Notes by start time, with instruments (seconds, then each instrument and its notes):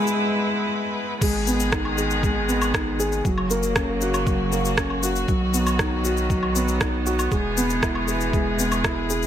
Already playing: string quartet G#3 B3 E4 B4, felt piano G#3
0.07 shaker
1.21 analog synth bass G#1, string quartet D#3 G#3 B3 G#4, felt piano G#3, kick, crash, shaker
1.47 felt piano B3, shaker
1.60 shaker
1.72 felt piano D#4, kick, cross-stick, shaker
1.85 low woodblock
1.98 felt piano G#4, shaker
2.11 shaker
2.23 felt piano G#3, kick, shaker
2.49 felt piano B3, shaker
2.62 low woodblock, shaker
2.74 felt piano D#4, kick, cross-stick, shaker
3.00 felt piano G#4, shaker
3.12 shaker
3.25 analog synth bass F#1, string quartet C#3 F#3 A#3 F#4, felt piano F#3, kick, shaker
3.38 low woodblock
3.50 felt piano A#3, shaker
3.63 shaker
3.76 felt piano C#4, kick, cross-stick, shaker
4.01 felt piano F#4, shaker
4.14 low woodblock, shaker
4.27 felt piano F#3, kick, shaker
4.52 felt piano A#3, shaker
4.65 shaker
4.78 felt piano C#4, kick, cross-stick, shaker
4.90 low woodblock
5.03 felt piano F#4, shaker
5.16 shaker
5.28 analog synth bass B1, string quartet D#3 F#3 B3, felt piano F#3, kick, shaker
5.54 felt piano B3, shaker
5.67 low woodblock, shaker
5.79 felt piano D#4, kick, cross-stick, shaker
6.04 felt piano F#4, shaker
6.17 shaker
6.30 felt piano F#3, kick, shaker
6.43 low woodblock
6.56 felt piano B3, shaker
6.68 shaker
6.81 felt piano D#4, kick, cross-stick, shaker
7.06 felt piano F#4, shaker
7.19 low woodblock, shaker
7.31 analog synth bass E1, string quartet E3 G#3 G#4, felt piano G#3, kick, shaker
7.57 felt piano B3, shaker
7.70 shaker
7.83 felt piano E4, kick, cross-stick, shaker
7.95 low woodblock
8.08 felt piano G#4, shaker
8.21 shaker
8.33 felt piano G#3, kick, shaker
8.59 felt piano B3, shaker
8.72 low woodblock, shaker
8.84 felt piano E4, kick, cross-stick, shaker
9.10 felt piano G#4, shaker
9.23 shaker